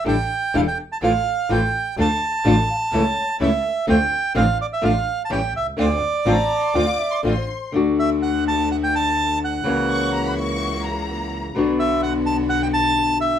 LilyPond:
<<
  \new Staff \with { instrumentName = "Violin section" } { \time 4/4 \key d \minor \tempo 4 = 126 r1 | r1 | r1 | r4 bes''8. c'''16 d'''8. c'''16 c'''4 |
\key d \major r1 | r8 cis'''8 ais''16 b''16 cis'''4 ais''4.~ | ais''16 r2. r8. | }
  \new Staff \with { instrumentName = "Bandoneon" } { \time 4/4 \key d \minor g''4 f''16 g''8 a''16 f''4 g''4 | a''2. e''4 | g''4 f''8 d''16 e''16 f''8.~ f''32 a''32 g''8 e''8 | d''2. r4 |
\key d \major r8 e''8 fis''8 a''8 fis''16 g''16 a''4 fis''8~ | fis''4. r2 r8 | r8 e''8 fis''8 a''8 fis''16 g''16 a''4 e''8 | }
  \new Staff \with { instrumentName = "Flute" } { \time 4/4 \key d \minor r1 | r4 d''8 f''8 cis''8. r4 r16 | r1 | r4 a''4 f''8 e''8 d''16 c''8. |
\key d \major r1 | r1 | r1 | }
  \new Staff \with { instrumentName = "String section" } { \time 4/4 \key d \minor <d' g' a'>8 r8 <d' g' a'>8 r8 <e' f' a'>8 r8 <e' f' a'>8 r8 | <d' f' a'>8 r8 <d' f' a'>8 r8 <cis' e' a'>8 r8 <cis' e' a'>8 r8 | <c' d' f'>8 r8 <c' d' f'>8 r8 <a d' f'>8 r8 <a cis' g'>8 r8 | <c' d' f'>8 r8 <c' d' f'>8 r8 <c' d' f'>8 r8 <c' d' f'>8 r8 |
\key d \major <a d' fis'>1 | <ais e' fis'>1 | <b d' fis'>1 | }
  \new Staff \with { instrumentName = "Nylon-string guitar" } { \time 4/4 \key d \minor <d g d' e'>8 r8 <d g d' e'>8 r8 <e a c' f'>8 r8 <e a c' f'>8 r8 | <d a d' f'>8 r8 <d a d' f'>8 r8 <cis e a cis' e'>8 r8 <cis e a cis' e'>8 r8 | <d a c' f'>8 r8 <d a c' f'>8 r8 <d a d' f'>8 r8 <e g cis' e'>8 r8 | <d a c' f'>8 r8 <d a c' f'>8 r8 <d a c' f'>8 r8 <d a c' f'>8 r8 |
\key d \major <d a d' fis'>1 | <cis e ais cis' fis'>1 | <b, d b d' fis'>1 | }
  \new Staff \with { instrumentName = "Double bass" } { \clef bass \time 4/4 \key d \minor a,,8 r8 e,,8 r8 a,,8 r8 a,,8 r8 | d,8 r8 a,,8 r8 cis,8 r8 cis,8 r8 | d,8 r8 a,,8 r8 a,,8 r8 a,,8 c,8 | d,8 r8 a,,8 r8 d,8 r8 a,,8 r8 |
\key d \major d,1 | cis,1 | b,,1 | }
>>